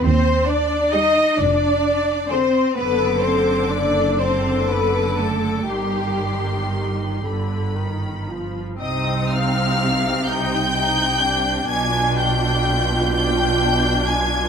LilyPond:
<<
  \new Staff \with { instrumentName = "Violin section" } { \time 6/8 \key c \minor \tempo 4. = 42 r4 ees'''8 r4 d'''8 | d'''4. d'''4. | c'''4. b''4. | ees'''8 f'''4 g'''4. |
aes'''8 g'''4 g'''4 aes'''8 | }
  \new Staff \with { instrumentName = "Violin section" } { \time 6/8 \key c \minor c''8 d''8 ees''8 d''4 c''8 | b'8 c''8 d''8 c''8 b'8 a'8 | g'4. r4. | ees''8 f''4 g''4. |
aes''8 g''4 g''4 aes''8 | }
  \new Staff \with { instrumentName = "Viola section" } { \time 6/8 \key c \minor << { r4 g'8 r4 aes'8 | a'4. a'4. | g'4. d8 ees8 f8 | ees'2. |
f'2. | } \\ { r4 g8 r4 d8 | d4. d4. | ees4. r4. | c'4. ees'8 ees'8 d'8~ |
d'4. d'4. | } >> }
  \new Staff \with { instrumentName = "Cello section" } { \time 6/8 \key c \minor c'8 d'8 ees'8 d'4 c'8 | b8 c'8 d'8 c'8 b8 a8 | g4. r4. | c2. |
b,2. | }
  \new Staff \with { instrumentName = "Double bass section" } { \clef bass \time 6/8 \key c \minor ees,4. f,,4. | fis,,2. | g,,4. g,,4. | c,2. |
b,,2. | }
>>